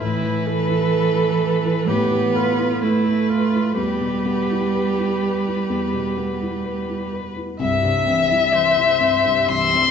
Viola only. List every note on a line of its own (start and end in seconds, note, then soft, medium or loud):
0.01 0.48 E4 medium
0.46 1.89 A4 medium
1.88 2.37 G4 medium
2.35 2.83 F4 medium
2.82 3.31 E4 soft
3.29 3.76 F4 soft
3.77 7.09 G4 medium
7.60 8.55 E5 medium
8.53 9.48 C5 medium
9.49 9.91 E5 medium